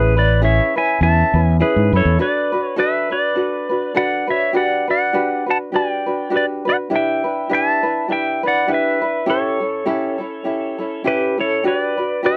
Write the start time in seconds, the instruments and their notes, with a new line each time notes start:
Already playing: fretless electric bass A1, ukulele C#4 E4 G#4 B4, pedal steel guitar G#4 B4
0.16 ukulele C#4 E4 B4, pedal steel guitar B4 D5
0.42 ukulele C#4 E4 G#4 B4, pedal steel guitar C#5 E5
0.76 ukulele C#4 E4 B4, pedal steel guitar E5 G#5
1.01 fretless electric bass E2, ukulele C#4 E4 G#4 B4, pedal steel guitar E5 A5
1.34 fretless electric bass E2, ukulele C#4 E4 B4
1.42 pedal steel guitar G#5
1.60 ukulele C#4 E4 G#4 B4, pedal steel guitar G#4 B4
1.76 fretless electric bass G#2
1.92 fretless electric bass F#2, ukulele C#4 E4 B4, pedal steel guitar A4
1.97 pedal steel guitar C#5
2.05 fretless electric bass E2
2.19 ukulele D4 F#4 A4 B4, pedal steel guitar B4 D5
2.52 ukulele D4 F#4 B4
2.64 pedal steel guitar C#5
2.76 ukulele D4 F#4 A4 B4, pedal steel guitar B4 E5
3.10 ukulele D4 F#4 B4, pedal steel guitar B4 D5
3.35 ukulele D4 F#4 A4 B4
3.69 ukulele D4 F#4 B4
3.94 ukulele D4 F#4 A4 B4, pedal steel guitar D5 F#5
4.27 ukulele D4 F#4 B4, pedal steel guitar C#5 E5
4.53 ukulele D4 F#4 G4 B4, pedal steel guitar F#5
4.57 pedal steel guitar D5
4.88 ukulele D4 F#4 B4, pedal steel guitar D5 F#5
5.13 ukulele D4 F#4 G4 B4
5.46 ukulele D4 F#4 B4
5.50 pedal steel guitar F#5 A5
5.72 ukulele D4 F#4 G4 B4, pedal steel guitar D5
5.76 pedal steel guitar G5
6.06 ukulele D4 F#4 B4
6.30 ukulele D4 F#4 G4 B4
6.36 pedal steel guitar B4 D5
6.65 ukulele D4 F#4 B4
6.69 pedal steel guitar D5 F#5
6.90 ukulele D4 E4 G4 B4
6.96 pedal steel guitar E5 G5
7.24 ukulele D4 E4 B4
7.49 ukulele D4 E4 G4 B4, pedal steel guitar E5
7.54 pedal steel guitar A5
7.83 ukulele D4 E4 B4
8.08 ukulele D4 E4 G4 B4, pedal steel guitar E5
8.13 pedal steel guitar G5
8.43 ukulele D4 E4 B4
8.47 pedal steel guitar D5 F#5
8.67 ukulele D4 E4 G4 B4
8.73 pedal steel guitar B4 E5
9.01 ukulele D4 E4 B4
9.26 ukulele C#4 E4 G4 A4, pedal steel guitar A4
9.30 pedal steel guitar C#5
9.60 ukulele C#4 E4 A4
9.86 ukulele C#4 E4 G4 A4
10.18 ukulele C#4 E4 A4
10.44 ukulele C#4 E4 G4 A4
10.78 ukulele C#4 E4 A4
11.04 ukulele C#4 E4 G4 A4, pedal steel guitar G4 B4
11.38 ukulele C#4 E4 A4, pedal steel guitar A4 C#5
11.64 ukulele D4 F#4 G4 B4, pedal steel guitar B4
11.68 pedal steel guitar D5
11.97 ukulele D4 F#4 B4
12.23 ukulele D4 F#4 G4 B4, pedal steel guitar B4 E5